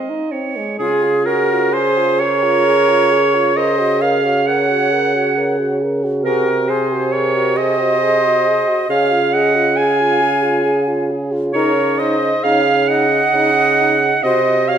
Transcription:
0.00 0.11 C4 medium
0.00 0.33 D#5 medium
0.10 0.34 D#4 medium
0.31 0.58 C4 medium
0.31 0.78 C#5 medium
0.56 0.79 G#3 medium
0.79 6.26 C#3 medium
0.79 1.23 F4 medium
0.79 1.22 G#4 medium
0.79 1.28 G#4 medium
0.79 1.06 G#4 medium
1.05 1.29 F4 medium
1.26 1.74 F#4 medium
1.26 1.53 G#4 medium
1.26 1.75 A#4 medium
1.51 1.73 F4 medium
1.73 2.21 G#4 medium
1.73 1.99 G#4 medium
1.73 2.21 C5 medium
1.98 2.22 F4 medium
2.19 2.45 G#4 soft
2.19 3.55 A#4 medium
2.19 3.58 C#5 medium
2.19 3.58 C#5 loud
2.43 2.65 F4 medium
2.66 2.90 G#4 medium
2.89 3.13 F4 medium
3.12 3.36 G#4 medium
3.34 3.56 F4 medium
3.56 3.81 A#4 medium
3.56 4.03 C5 medium
3.56 4.03 D#5 medium
3.80 4.04 F#4 medium
4.01 4.26 A#4 medium
4.01 4.45 C#5 medium
4.01 4.46 F5 medium
4.01 4.49 F5 medium
4.24 4.47 F#4 medium
4.46 4.71 A#4 soft
4.46 5.77 C#5 medium
4.46 5.80 F#5 loud
4.46 5.78 F#5 medium
4.69 4.94 F#4 soft
4.92 5.16 A#4 soft
5.14 5.36 F#4 medium
5.37 5.60 A#4 medium
5.59 5.84 F#4 medium
5.82 6.05 A#4 medium
6.04 6.25 F#4 soft
6.24 8.63 C3 medium
6.24 6.65 F#4 medium
6.24 6.50 G#4 medium
6.24 6.70 A#4 medium
6.24 6.72 A#4 medium
6.48 6.71 F#4 medium
6.69 7.14 G#4 medium
6.69 6.94 G#4 soft
6.69 7.13 C5 medium
6.69 7.14 C5 medium
6.92 7.13 F#4 medium
7.12 7.37 G#4 soft
7.12 7.58 A#4 medium
7.12 7.58 C#5 medium
7.12 7.59 C#5 medium
7.36 7.60 F#4 medium
7.56 7.81 G#4 soft
7.56 8.88 C5 medium
7.56 8.89 D#5 loud
7.56 8.90 D#5 medium
7.80 8.01 F#4 soft
8.02 8.26 G#4 medium
8.25 8.48 F#4 soft
8.47 8.70 G#4 soft
8.68 8.89 F#4 medium
8.89 11.50 C#3 medium
8.89 9.14 G#4 medium
8.89 9.34 C#5 medium
8.89 9.35 F5 medium
9.12 9.36 F4 medium
9.33 9.57 G#4 medium
9.33 9.79 D#5 medium
9.33 9.78 F#5 medium
9.33 9.79 F#5 medium
9.56 9.77 F4 medium
9.77 10.02 G#4 medium
9.77 11.09 F5 medium
9.77 11.09 G#5 loud
9.77 11.10 G#5 medium
10.01 10.23 F4 medium
10.22 10.45 G#4 soft
10.43 10.65 F4 medium
10.65 10.89 G#4 medium
10.88 11.12 F4 soft
11.11 11.34 G#4 medium
11.33 11.54 F4 medium
11.53 12.33 C#3 medium
11.53 11.71 D#4 medium
11.53 12.01 A#4 medium
11.53 12.00 C#5 medium
11.53 12.01 C#5 medium
11.98 12.16 D#4 medium
11.98 12.45 C5 medium
11.98 12.45 D#5 medium
11.98 12.43 D#5 medium
12.43 13.23 C#3 medium
12.43 12.61 D#4 medium
12.43 12.88 C#5 medium
12.43 12.90 F5 medium
12.43 12.90 F5 loud
12.88 13.06 D#4 soft
12.88 14.21 D#5 loud
12.88 14.25 F#5 loud
12.88 14.23 F#5 medium
13.33 14.13 C#3 medium
13.33 13.50 D#4 medium
13.79 13.95 D#4 medium
14.23 14.78 C3 medium
14.23 14.41 F#4 medium
14.23 14.71 C5 medium
14.23 14.70 D#5 medium
14.68 14.78 F#4 medium
14.68 14.78 C#5 medium
14.68 14.78 F5 medium

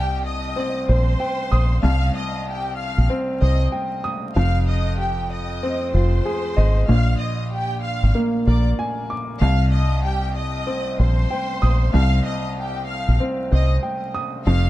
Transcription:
0.00 0.53 C2 loud
0.00 1.81 C2 loud
0.00 0.22 G4 medium
0.00 0.22 G5 loud
0.26 0.85 D#5 medium
0.26 0.85 D#6 medium
0.56 3.08 C4 medium
0.89 1.14 A#1 medium
0.89 1.80 C5 medium
0.89 3.40 C5 medium
0.89 1.80 C6 medium
1.20 3.71 G5 loud
1.52 1.77 A#1 medium
1.52 4.03 D#6 loud
1.83 4.36 C2 loud
1.83 2.09 C2 loud
1.83 2.12 F5 loud
1.83 2.12 F6 medium
2.16 2.44 D#5 medium
2.16 2.44 D#6 medium
2.48 2.76 G4 medium
2.48 2.76 G5 medium
2.76 3.05 F5 medium
2.76 3.06 F6 medium
2.98 3.08 A#1 medium
3.10 4.36 C4 loud
3.41 3.67 C2 medium
3.41 4.36 C5 medium
3.41 3.59 D#5 medium
3.41 3.60 D#6 medium
3.72 4.36 G5 medium
4.04 4.36 D#6 loud
4.36 5.59 F1 loud
4.36 6.89 F2 loud
4.36 4.65 F5 loud
4.36 4.65 F6 medium
4.68 4.96 D#5 medium
4.68 4.97 D#6 medium
4.98 5.27 G4 medium
4.98 5.27 G5 loud
5.31 5.90 D#5 medium
5.31 5.91 D#6 medium
5.63 6.89 C4 loud
5.92 6.20 F1 medium
5.92 6.89 F4 medium
5.92 6.84 C5 medium
5.92 6.84 C6 medium
6.26 6.89 G#4 medium
6.57 6.83 G#1 medium
6.57 6.88 D#5 loud
6.88 9.41 A#1 medium
6.88 7.14 A#1 loud
6.88 7.17 F5 loud
6.88 7.17 F6 medium
7.18 7.48 D#5 medium
7.18 7.48 D#6 medium
7.52 7.81 G4 medium
7.52 7.80 G5 medium
7.82 8.11 F5 medium
7.82 8.12 F6 medium
8.03 8.13 G#1 medium
8.15 9.41 A#3 medium
8.47 8.72 A#1 medium
8.47 9.42 A#4 medium
8.47 8.64 D5 medium
8.47 8.65 D6 medium
8.79 9.42 G#5 loud
9.10 9.41 D6 medium
9.41 11.92 C2 loud
9.41 10.64 C2 loud
9.41 9.69 F5 loud
9.41 9.70 F6 medium
9.72 10.01 D#5 medium
9.72 10.01 D#6 medium
10.04 10.33 G4 medium
10.04 10.32 G5 loud
10.36 10.96 D#5 medium
10.36 10.96 D#6 medium
10.67 13.19 C4 medium
10.99 11.25 A#1 medium
10.99 11.90 C5 medium
10.99 13.50 C5 medium
10.99 11.91 C6 medium
11.31 13.81 G5 medium
11.62 11.88 A#1 medium
11.62 14.13 D#6 loud
11.93 14.46 C2 loud
11.93 12.20 C2 loud
11.93 12.22 F5 loud
11.93 12.23 F6 medium
12.27 12.54 D#5 medium
12.27 12.55 D#6 medium
12.59 12.87 G4 medium
12.59 12.86 G5 medium
12.86 13.16 F5 medium
12.86 13.16 F6 medium
13.08 13.18 A#1 medium
13.20 14.47 C4 medium
13.52 13.78 C2 medium
13.52 14.47 C5 medium
13.52 13.70 D#5 medium
13.52 13.70 D#6 medium
13.83 14.46 G5 medium
14.14 14.46 D#6 loud
14.47 14.70 F1 loud
14.47 14.70 F2 loud
14.47 14.70 F5 loud
14.47 14.70 F6 medium

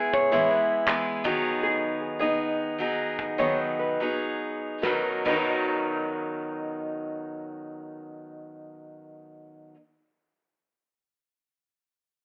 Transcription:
0.00 0.32 G#3 medium
0.00 0.31 B3 medium
0.00 0.31 E4 medium
0.00 0.30 G#4 medium
0.13 0.51 C#5 medium
0.13 kick medium
0.32 0.88 E3 medium
0.32 0.85 G#3 medium
0.32 0.87 B3 medium
0.32 0.87 E4 medium
0.32 0.87 G#4 medium
0.51 0.68 B4 medium
0.87 1.24 G#3 medium
0.87 1.24 B3 medium
0.87 1.25 E4 medium
0.87 1.25 G#4 medium
0.87 clap medium
1.24 3.40 D#3 medium
1.24 2.22 F#3 medium
1.24 2.22 B3 medium
1.24 2.20 D#4 medium
1.24 2.18 G#4 medium
1.24 kick medium
1.63 1.99 G#4 medium
2.19 2.79 B3 soft
2.19 2.79 D#4 soft
2.19 2.78 G#4 soft
2.19 2.75 D#5 medium
2.78 3.38 F#3 medium
2.78 3.38 B3 medium
2.78 3.38 D#4 medium
2.78 3.37 G#4 medium
3.19 kick medium
3.38 4.01 D#3 medium
3.38 3.99 F#3 medium
3.38 4.00 B3 medium
3.38 4.00 D#4 medium
3.38 4.00 G#4 medium
3.38 3.58 C#5 medium
3.79 4.18 B4 medium
4.00 4.84 F#3 soft
4.00 4.86 B3 medium
4.00 4.87 D#4 medium
4.00 4.85 G#4 medium
4.82 5.25 B2 medium
4.82 5.26 D#3 medium
4.82 5.28 F#3 medium
4.82 5.28 C#4 medium
4.82 5.07 B4 medium
4.82 kick medium
4.82 snare medium
4.87 5.30 D#4 medium
4.87 5.28 A#4 medium
5.25 9.74 B2 medium
5.25 9.74 D#3 medium
5.25 9.75 F#3 medium
5.25 7.35 B4 medium
5.25 kick medium
5.25 crash medium
5.29 9.76 C#4 medium
5.29 9.76 D#4 medium
5.29 9.77 A#4 medium

